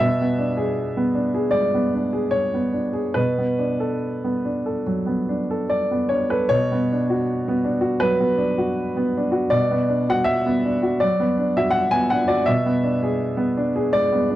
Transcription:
0.00 1.50 B2 medium
0.00 1.52 E5 loud
0.21 0.51 B3 soft
0.39 0.69 D4 soft
0.57 1.19 G#4 medium
0.97 1.27 B3 medium
1.15 1.46 D4 soft
1.34 1.66 G#4 soft
1.51 1.85 G#3 soft
1.51 2.33 D5 medium
1.74 2.06 B3 soft
1.94 2.26 D4 soft
2.13 2.79 G#4 soft
2.31 3.16 C#5 medium
2.54 2.87 B3 soft
2.74 3.08 D4 soft
2.93 3.16 G#4 soft
3.14 4.81 B2 medium
3.14 6.10 B4 medium
3.38 3.72 B3 soft
3.59 3.93 D4 soft
3.80 4.48 A4 soft
4.24 4.57 B3 soft
4.45 4.78 D4 soft
4.66 4.99 A4 soft
4.86 5.20 F#3 soft
5.06 5.40 B3 soft
5.29 5.62 D4 soft
5.51 6.16 A4 soft
5.70 6.11 D5 medium
5.91 6.24 B3 soft
6.09 6.43 D4 soft
6.09 6.30 C#5 medium
6.30 6.50 A4 soft
6.30 6.51 B4 medium
6.49 7.99 B2 medium
6.49 8.02 C#5 loud
6.72 7.02 B3 medium
6.92 7.22 D4 soft
7.10 7.70 F#4 medium
7.48 7.77 B3 medium
7.64 7.95 D4 soft
7.81 8.13 F#4 medium
8.00 8.32 F#3 soft
8.00 9.51 B4 medium
8.20 8.51 B3 soft
8.38 8.69 D4 medium
8.58 9.18 F#4 soft
8.97 9.27 B3 soft
9.17 9.46 D4 soft
9.32 9.63 F#4 medium
9.50 10.97 B2 medium
9.50 10.07 D5 medium
9.71 10.01 B3 medium
9.89 10.19 D4 soft
10.09 10.68 F#4 medium
10.09 10.28 F#5 loud
10.24 11.00 E5 loud
10.46 10.76 B3 medium
10.65 10.95 D4 soft
10.83 11.13 F#4 medium
11.00 11.32 F#3 soft
11.00 11.56 D5 medium
11.20 11.50 B3 soft
11.38 11.68 D4 medium
11.57 12.15 F#4 medium
11.57 11.75 E5 medium
11.71 11.91 F#5 loud
11.91 12.22 B3 soft
11.91 12.11 G#5 loud
12.10 12.41 D4 soft
12.10 12.29 F#5 medium
12.28 12.48 F#4 medium
12.28 12.47 D5 medium
12.46 13.90 B2 medium
12.46 13.94 E5 loud
12.66 12.95 B3 soft
12.83 13.13 D4 soft
13.03 13.62 G#4 medium
13.37 13.68 B3 medium
13.57 13.87 D4 medium
13.76 14.06 G#4 medium
13.93 14.23 G#3 medium
13.93 14.36 D5 loud
14.12 14.36 B3 soft
14.30 14.36 D4 soft

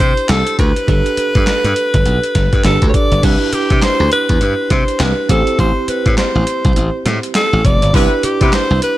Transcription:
0.00 0.12 C3 medium
0.00 0.54 D4 medium
0.00 0.55 E4 medium
0.00 0.55 G4 medium
0.00 0.31 C5 loud
0.00 0.56 C5 medium
0.00 kick medium
0.00 closed hi-hat medium
0.17 closed hi-hat medium
0.29 0.42 C2 medium
0.29 0.59 A4 medium
0.29 snare loud
0.29 clap medium
0.29 closed hi-hat medium
0.47 closed hi-hat medium
0.59 0.71 D2 medium
0.59 2.61 B4 loud
0.59 kick loud
0.59 closed hi-hat medium
0.76 closed hi-hat medium
0.87 1.01 G1 loud
0.87 2.61 D4 medium
0.87 2.61 G4 medium
0.87 2.61 A4 medium
0.87 2.62 B4 medium
0.87 kick loud
0.87 closed hi-hat medium
1.06 closed hi-hat soft
1.17 muted slap bass stroke soft
1.17 closed hi-hat medium
1.35 1.44 G2 medium
1.35 kick loud
1.35 closed hi-hat medium
1.47 snare loud
1.47 clap medium
1.47 closed hi-hat medium
1.64 1.73 G2 medium
1.64 closed hi-hat medium
1.76 closed hi-hat medium
1.94 2.02 G1 medium
1.94 kick loud
1.94 closed hi-hat medium
2.05 2.18 B1 medium
2.05 closed hi-hat medium
2.23 closed hi-hat medium
2.35 2.48 G1 medium
2.35 kick medium
2.35 snare medium
2.35 closed hi-hat medium
2.53 2.61 G2 medium
2.53 kick loud
2.53 closed hi-hat medium
2.64 2.77 G1 medium
2.64 3.21 D4 medium
2.64 3.23 G4 medium
2.64 3.24 A4 medium
2.64 2.87 A4 medium
2.64 3.24 B4 medium
2.64 snare loud
2.64 clap medium
2.64 closed hi-hat medium
2.82 2.90 D2 medium
2.82 kick medium
2.82 closed hi-hat medium
2.89 2.96 C#5 medium
2.94 3.26 D5 loud
2.94 kick loud
2.94 closed hi-hat medium
3.11 3.20 G1 medium
3.11 closed hi-hat medium
3.22 3.36 C2 loud
3.22 5.25 D4 medium
3.22 5.25 E4 medium
3.22 5.26 G4 medium
3.22 3.55 B4 loud
3.22 5.26 B4 medium
3.22 kick loud
3.22 closed hi-hat medium
3.22 crash medium
3.53 3.85 G4 medium
3.53 muted slap bass stroke soft
3.53 closed hi-hat medium
3.70 3.79 C3 medium
3.70 kick medium
3.70 closed hi-hat medium
3.82 4.12 C5 loud
3.82 snare loud
3.82 clap medium
3.82 closed hi-hat medium
4.00 4.08 D2 medium
4.12 4.73 B4 loud
4.12 closed hi-hat medium
4.29 4.38 E2 medium
4.29 kick medium
4.29 closed hi-hat medium
4.41 4.53 G2 medium
4.41 closed hi-hat medium
4.70 4.83 C3 loud
4.70 5.03 C5 loud
4.70 kick medium
4.70 snare medium
4.70 closed hi-hat medium
4.88 closed hi-hat soft
5.00 5.12 C2 loud
5.00 5.30 B4 loud
5.00 snare loud
5.00 clap medium
5.00 closed hi-hat medium
5.29 5.42 A1 loud
5.29 7.60 C4 medium
5.29 7.61 E4 medium
5.29 7.61 G4 medium
5.29 5.57 A4 medium
5.29 7.61 C5 medium
5.29 kick loud
5.29 closed hi-hat medium
5.47 closed hi-hat medium
5.59 5.71 A1 loud
5.59 5.91 C5 loud
5.59 kick medium
5.59 closed hi-hat medium
5.88 6.18 B4 medium
5.88 muted slap bass stroke soft
5.88 closed hi-hat medium
6.06 6.14 A2 medium
6.06 kick loud
6.06 closed hi-hat medium
6.18 7.05 C5 medium
6.18 snare loud
6.18 clap medium
6.18 closed hi-hat medium
6.35 6.44 A1 medium
6.47 closed hi-hat medium
6.65 6.73 C2 medium
6.65 kick loud
6.65 closed hi-hat medium
6.76 6.89 A1 medium
6.76 closed hi-hat medium
7.06 7.18 A2 loud
7.06 snare medium
7.06 closed hi-hat medium
7.23 closed hi-hat soft
7.35 7.67 A4 loud
7.35 snare loud
7.35 clap medium
7.35 closed hi-hat medium
7.53 7.61 A1 medium
7.65 7.77 F1 medium
7.65 7.96 D5 medium
7.65 kick loud
7.65 closed hi-hat medium
7.82 7.91 G1 medium
7.82 closed hi-hat medium
7.93 8.06 C2 loud
7.93 8.12 B3 medium
7.93 8.12 C4 medium
7.93 8.98 D4 medium
7.93 8.12 E4 medium
7.93 8.98 E4 medium
7.93 8.12 G4 medium
7.93 8.98 G4 medium
7.93 8.12 B4 loud
7.93 8.26 B4 loud
7.93 8.98 B4 medium
7.93 kick loud
7.93 closed hi-hat medium
8.23 8.55 G4 medium
8.23 muted slap bass stroke soft
8.23 closed hi-hat medium
8.41 8.49 C3 medium
8.41 8.53 B3 medium
8.41 8.53 C4 medium
8.41 8.53 E4 medium
8.41 8.53 G4 medium
8.41 8.53 B4 medium
8.41 kick loud
8.41 closed hi-hat medium
8.53 8.83 C5 loud
8.53 snare loud
8.53 clap medium
8.53 closed hi-hat medium
8.71 8.79 C2 medium
8.82 8.98 B4 loud
8.82 closed hi-hat medium

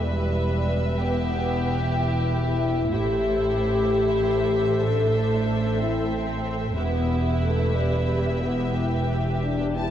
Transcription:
0.00 2.88 E1 soft
0.00 2.89 E2 soft
0.00 0.99 G3 medium
0.00 2.89 B4 soft
0.00 0.98 B4 soft
0.00 2.89 E5 soft
0.99 1.79 B3 medium
0.99 2.93 G4 medium
1.96 2.91 E4 medium
2.91 6.77 A1 soft
2.91 6.78 A2 soft
2.91 4.81 E4 soft
2.91 4.86 G4 medium
2.91 6.74 A4 soft
2.91 6.74 C5 soft
2.91 6.74 E5 soft
4.83 5.79 D4 soft
4.83 5.80 A4 medium
5.81 6.78 C4 soft
5.81 6.13 E4 medium
6.77 9.90 E1 soft
6.77 9.90 E2 soft
6.77 7.39 B3 medium
6.77 8.73 E4 soft
6.77 9.90 G4 soft
6.77 9.90 B4 soft
6.77 9.64 E5 soft
7.42 7.75 A3 soft
7.75 8.42 G3 medium
8.42 8.76 B3 soft
8.76 9.41 E4 soft
8.76 9.90 G4 soft
9.42 9.73 D4 soft
9.75 9.90 E4 soft
9.75 9.90 A5 soft

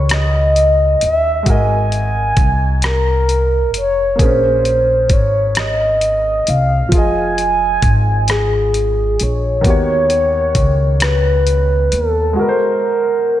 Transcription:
0.00 0.97 C#2 medium
0.00 1.40 D#3 medium
0.00 1.42 C#4 medium
0.00 1.43 F#4 medium
0.00 1.44 G4 medium
0.00 1.45 B4 medium
0.00 0.15 C#5 medium
0.09 1.03 D#5 medium
0.09 cross-stick medium
0.09 closed hi-hat medium
0.56 closed hi-hat soft
1.01 1.43 D#2 medium
1.01 1.52 E5 loud
1.01 closed hi-hat medium
1.43 4.13 G#3 medium
1.43 4.15 F#4 medium
1.43 kick medium
1.43 closed hi-hat medium
1.47 2.34 G#1 medium
1.47 4.16 A#4 medium
1.47 2.84 G#5 loud
1.52 4.18 D#5 medium
1.92 closed hi-hat soft
2.37 3.75 C2 medium
2.37 kick medium
2.37 closed hi-hat medium
2.82 3.71 A#4 medium
2.82 cross-stick medium
2.82 closed hi-hat medium
3.29 closed hi-hat soft
3.74 4.16 F1 medium
3.74 4.24 C#5 loud
3.74 closed hi-hat medium
4.16 6.86 A#3 medium
4.16 6.88 G#4 medium
4.16 kick loud
4.16 closed hi-hat medium
4.20 5.06 A#1 medium
4.20 6.89 A#4 soft
4.20 5.15 C5 loud
4.25 6.91 C#4 medium
4.65 closed hi-hat soft
5.10 6.42 G#1 medium
5.10 5.61 C#5 medium
5.10 kick medium
5.10 closed hi-hat medium
5.55 cross-stick medium
5.55 closed hi-hat medium
5.59 6.51 D#5 medium
6.01 closed hi-hat medium
6.47 6.93 C2 medium
6.47 6.93 F5 medium
6.47 closed hi-hat medium
6.89 7.79 F1 loud
6.89 9.59 F3 medium
6.89 9.60 F4 medium
6.89 kick loud
6.89 closed hi-hat medium
6.94 9.62 G#4 soft
6.94 9.63 D#5 medium
6.94 8.32 G#5 loud
7.38 closed hi-hat soft
7.82 9.15 G#1 medium
7.82 kick medium
7.82 closed hi-hat medium
8.28 9.24 G#4 medium
8.28 cross-stick medium
8.28 closed hi-hat medium
8.74 closed hi-hat soft
9.20 9.61 A#1 medium
9.20 11.04 C#5 loud
9.20 closed hi-hat medium
9.61 10.52 D#2 medium
9.61 12.31 D#3 medium
9.61 12.32 B3 medium
9.61 kick loud
9.61 closed hi-hat medium
9.65 12.34 F#4 medium
9.65 12.35 G4 medium
9.70 12.36 C#5 medium
10.10 closed hi-hat soft
10.55 11.88 C#2 medium
10.55 kick medium
10.55 closed hi-hat medium
11.00 11.97 B4 medium
11.00 cross-stick medium
11.00 closed hi-hat medium
11.47 closed hi-hat soft
11.92 12.34 D#2 medium
11.92 12.41 A4 medium
11.92 closed hi-hat medium
12.33 13.40 G#3 medium
12.33 13.40 F#4 medium
12.39 13.40 A#4 medium
12.39 12.46 B4 soft
12.49 13.40 C5 medium

